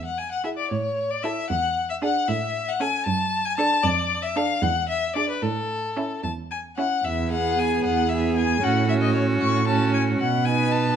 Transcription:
Already playing: cello E2
0.05 violin F#5
0.18 violin G#5
0.32 violin F#5
0.44 viola E4, violin G#4 E5
0.58 violin D5
0.71 cello A2, violin C#5
1.10 violin D5
1.23 viola E4, violin A4 E5
1.50 cello E2, violin F#5
1.90 violin E5
2.02 viola D4, violin G#4 F#5
2.28 cello A2, violin E5
2.69 violin F#5
2.80 viola C#4, violin A4 G#5
3.06 cello F#2, violin A5
3.45 violin G#5
3.58 viola D4, violin A4 A5
3.83 cello F2, violin D5
4.23 violin E5
4.36 viola D4, violin A4 F5
4.62 cello E2, violin F#5
4.89 violin E5
5.16 viola D4, violin G#4 D5
5.29 violin B4
5.42 cello A2, violin A4
5.97 viola C#4, violin E4
6.23 cello E2, violin A5
6.51 violin G#5
6.77 viola C#4, violin E4 F#5
7.05 cello E2, violin E5
7.31 viola B3, violin G#4 F#5
7.59 violin G#5
7.84 cello E2, violin F#5
8.09 viola B3, violin G#4 E5
8.37 violin G#5
8.63 cello A2, viola C#4, violin F#4 F#5
8.89 viola C#4, violin F#4 E5
9.02 violin D#5
9.14 violin C#5
9.41 cello A2, violin C#6
9.68 viola C#4, violin F#4 A5
9.94 violin G#5
10.20 cello B2, violin F#5
10.45 viola D#4, violin B4 G#5
10.72 violin A5

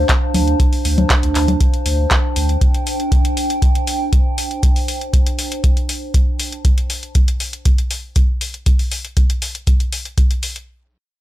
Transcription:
Already playing: ambient pad D4 C5 F5 A5
0.09 kick, clap, closed hi-hat
0.34 sub bass D2, open hi-hat, low conga
0.47 closed hi-hat
0.60 kick, closed hi-hat
0.73 open hi-hat
0.85 sub bass D2, open hi-hat
0.98 closed hi-hat, low conga
1.10 kick, clap, closed hi-hat
1.23 sub bass D2, closed hi-hat
1.35 sub bass D2, clap, open hi-hat
1.48 closed hi-hat, low conga
1.61 kick, closed hi-hat
1.74 closed hi-hat
1.86 sub bass D2, open hi-hat
1.93 ambient pad G5
2.11 kick, clap, closed hi-hat
2.36 sub bass D2, open hi-hat
2.49 closed hi-hat
2.61 kick, closed hi-hat
2.74 closed hi-hat
2.87 open hi-hat
3.00 closed hi-hat
3.12 kick, closed hi-hat
3.25 closed hi-hat
3.37 open hi-hat
3.50 closed hi-hat
3.62 kick, closed hi-hat
3.75 closed hi-hat
3.87 open hi-hat
4.13 kick, closed hi-hat
4.38 open hi-hat
4.51 closed hi-hat
4.63 kick, closed hi-hat
4.76 open hi-hat
4.88 open hi-hat
5.01 closed hi-hat
5.13 kick, closed hi-hat
5.26 closed hi-hat
5.39 open hi-hat
5.52 closed hi-hat
5.64 kick, closed hi-hat
5.77 closed hi-hat
5.89 open hi-hat
6.14 kick, closed hi-hat
6.39 open hi-hat
6.52 closed hi-hat
6.65 kick, closed hi-hat
6.78 closed hi-hat
6.90 open hi-hat
7.03 closed hi-hat
7.15 kick, closed hi-hat
7.28 closed hi-hat
7.40 open hi-hat
7.53 closed hi-hat
7.65 kick, closed hi-hat
7.78 closed hi-hat
7.91 open hi-hat
8.16 kick, closed hi-hat
8.41 open hi-hat
8.54 closed hi-hat
8.66 kick, closed hi-hat
8.79 open hi-hat
8.91 open hi-hat
9.05 closed hi-hat
9.17 kick, closed hi-hat
9.30 closed hi-hat
9.42 open hi-hat
9.55 closed hi-hat
9.67 kick, closed hi-hat
9.80 closed hi-hat
9.92 open hi-hat
10.05 closed hi-hat
10.18 kick, closed hi-hat
10.31 closed hi-hat
10.43 open hi-hat
10.56 closed hi-hat

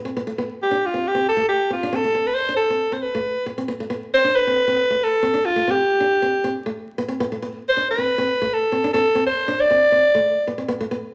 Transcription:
0.05 nylon-string guitar C4
0.17 nylon-string guitar B3
0.27 nylon-string guitar A3
0.38 nylon-string guitar B3
0.63 alto saxophone G4
0.71 nylon-string guitar D4
0.86 alto saxophone F4
0.94 nylon-string guitar C4
1.08 alto saxophone G4
1.15 nylon-string guitar C4
1.29 alto saxophone A4
1.37 nylon-string guitar A3
1.49 alto saxophone G4
1.70 nylon-string guitar C4, alto saxophone F4
1.83 nylon-string guitar D4
1.93 nylon-string guitar C4, alto saxophone A4
2.04 nylon-string guitar A3
2.15 nylon-string guitar C4
2.27 alto saxophone B4
2.34 alto saxophone C5
2.49 nylon-string guitar D4
2.56 alto saxophone A4
2.70 nylon-string guitar C4
2.92 nylon-string guitar C4, alto saxophone C5
3.02 alto saxophone B4
3.15 nylon-string guitar A3
3.46 muted nylon-string guitar stroke
3.58 nylon-string guitar C4
3.68 nylon-string guitar B3
3.80 nylon-string guitar A3
3.90 nylon-string guitar B3
4.14 alto saxophone C5
4.24 nylon-string guitar D4
4.36 alto saxophone B4
4.47 nylon-string guitar C4
4.68 nylon-string guitar C4
4.90 nylon-string guitar A3
5.04 alto saxophone A4
5.23 nylon-string guitar C4
5.34 nylon-string guitar D4
5.45 alto saxophone F4
5.56 nylon-string guitar A3
5.68 nylon-string guitar C4, alto saxophone G4
6.00 nylon-string guitar D4
6.22 nylon-string guitar C4
6.44 nylon-string guitar C4
6.66 nylon-string guitar A3
6.98 nylon-string guitar B3
7.08 nylon-string guitar C4
7.20 nylon-string guitar B3
7.32 nylon-string guitar A3
7.42 nylon-string guitar B3
7.69 alto saxophone C5
7.77 nylon-string guitar D4
7.91 alto saxophone B4
7.98 nylon-string guitar C4
8.18 nylon-string guitar C4
8.42 nylon-string guitar A3
8.53 alto saxophone A4
8.72 nylon-string guitar C4
8.84 nylon-string guitar D4
8.93 nylon-string guitar C4, alto saxophone A4
9.15 nylon-string guitar C4
9.27 alto saxophone C5
9.48 nylon-string guitar D4
9.60 alto saxophone D5
9.71 nylon-string guitar C4
9.92 nylon-string guitar C4
10.15 nylon-string guitar A3
10.47 nylon-string guitar B3
10.58 nylon-string guitar C4
10.68 nylon-string guitar B3
10.80 nylon-string guitar A3
10.91 nylon-string guitar B3

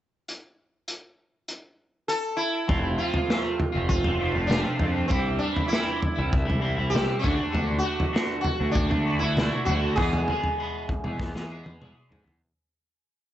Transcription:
0.28 closed hi-hat
0.88 closed hi-hat
1.48 closed hi-hat
2.08 sitar A4, closed hi-hat
2.37 sitar E4
2.67 picked electric bass F1, clean electric guitar F2 C3 F3 A3 C4 F4, kick, floor tom
2.98 clean electric guitar F3 A3 C4 F4, sitar F4
3.14 floor tom
3.28 clean electric guitar F2 C3 F3 A3 C4 F4, snare
3.60 muted clean electric guitar stroke, floor tom
3.72 picked electric bass F1, clean electric guitar F3 A3 C4 F4
3.89 sitar F4, kick, floor tom
4.04 picked electric bass F1, clean electric guitar F3 A3 C4 F4, floor tom
4.18 clean electric guitar F3 A3 C4 F4
4.34 picked electric bass F1, clean electric guitar F3 A3 C4 F4
4.47 clean electric guitar F2 C3 F3 A3 C4 F4, sitar D4, mid tom
4.51 snare
4.63 clean electric guitar F3 A3 C4 F4
4.79 picked electric bass F2, clean electric guitar F3 A3 C4 F4, floor tom
4.94 clean electric guitar F3 A3 C4 F4
5.08 picked electric bass C2, clean electric guitar C3 E3 G3 C4, sitar C4, kick, floor tom
5.12 clean electric guitar E4
5.39 clean electric guitar E3 G3 C4, sitar D4
5.43 clean electric guitar E4
5.56 floor tom
5.68 clean electric guitar C3 E3, sitar E4
5.72 clean electric guitar G3 C4 E4, snare
6.01 muted clean electric guitar stroke, floor tom
6.16 picked electric bass C2, clean electric guitar G3 C4 E4
6.33 kick, floor tom
6.45 clean electric guitar G3 C4 E4
6.50 picked electric bass C2, floor tom
6.60 clean electric guitar E3 G3 C4 E4
6.76 picked electric bass C2, clean electric guitar G3 C4 E4
6.90 clean electric guitar C3 E3 G3 C4 E4, sitar G4
6.95 snare, mid tom
7.06 clean electric guitar G3 C4 E4
7.19 clean electric guitar D3 A3 D4 F#4, sitar D4
7.24 picked electric bass D2, kick, floor tom
7.36 clean electric guitar A3 D4 F#4
7.50 picked electric bass D2, clean electric guitar D3 A3 D4 F#4
7.55 floor tom
7.79 sitar F#4
7.83 clean electric guitar A3 D4 F#4
8.00 floor tom
8.12 clean electric guitar D3 A3 D4 F#4, snare
8.41 sitar F#4, muted clean electric guitar stroke, floor tom
8.58 picked electric bass D2, clean electric guitar A3 D4 F#4
8.71 sitar D4, kick
8.76 floor tom
8.89 picked electric bass D2, clean electric guitar A3 D4 F#4, floor tom
9.05 clean electric guitar D3 A3 D4 F#4
9.19 picked electric bass D2, clean electric guitar D4 F#4, sitar E4
9.23 clean electric guitar A3
9.37 clean electric guitar D3 A3 D4 F#4, snare, mid tom
9.53 clean electric guitar A3 D4 F#4
9.65 clean electric guitar D3 A3 D4, sitar F#4, floor tom
9.69 picked electric bass D2, clean electric guitar F#4
9.81 clean electric guitar A3 D4 F#4
9.96 clean electric guitar E2 B2 E3 G#3 B3 G#4, picked electric bass E2, sitar G#4, kick, floor tom
10.13 floor tom
10.28 clean electric guitar E3 G#3 B3 G#4, floor tom
10.44 floor tom
10.58 clean electric guitar E2 B2 E3 G#3 B3 G#4
10.89 muted clean electric guitar stroke, kick, floor tom
11.04 picked electric bass E2, clean electric guitar E3 G#3 B3 G#4, mid tom
11.20 kick, snare
11.35 picked electric bass E2, clean electric guitar E3 G#3 B3 G#4, snare
11.49 clean electric guitar E3 G#3 B3 G#4
11.64 picked electric bass E2, clean electric guitar E3 G#3 B3 G#4, high tom
11.79 clean electric guitar E2 B2 E3 G#3 B3 G#4, mid tom
11.95 clean electric guitar E3 G#3 B3 G#4
12.09 picked electric bass G#2, clean electric guitar E3 G#3 B3 G#4, floor tom
12.23 picked electric bass E2, clean electric guitar E3 G#3 B3 G#4
12.28 floor tom

